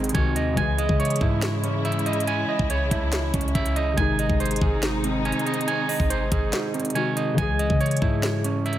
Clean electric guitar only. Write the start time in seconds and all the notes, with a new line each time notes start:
Already playing: C4 D#4 G#4 C5 D#5 G#5
0.14 G#5
0.36 D#5
0.57 G#5
0.78 D#5
1.00 C#5
1.21 E4
1.64 C#4
1.85 E5
2.06 D#5
2.27 G#5
2.49 D#5
2.70 C#5
2.91 E4
3.34 C#4
3.55 E5
3.76 D#5
3.97 G#5
4.19 D#5
4.40 C5
4.62 G#4
4.82 D#4
5.04 C4
5.25 G#5
5.46 D#5
5.68 G#5
5.89 D#5
6.10 C5
6.32 G#4
6.53 D#4
6.74 C4
6.95 G#5
7.17 D#5
7.38 G#5
7.59 D#5
7.80 C#5
8.02 E4
8.44 C#4
8.66 E5